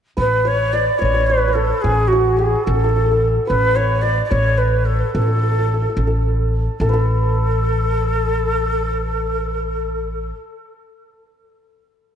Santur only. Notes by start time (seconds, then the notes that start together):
0.17 B4
0.45 C#5
0.73 D5
0.99 C#5
1.05 C#5
1.14 C#5
1.20 C#5
1.30 C#5
1.37 C#5
1.48 B4
1.55 A4
1.84 G#4
2.13 F#4
2.39 G#4
2.66 A4
2.74 A4
2.84 A4
2.89 A4
2.96 A4
3.04 A4
3.11 A4
3.47 B4
3.76 C#5
4.03 D5
4.31 C#5
5.14 A4
5.22 A4
5.28 A4
5.36 A4
5.43 A4
5.52 A4
5.59 A4
5.67 A4
5.74 A4
5.82 A4
5.90 A4
5.98 A4
6.07 A4
6.81 A4
6.89 B4
6.93 A4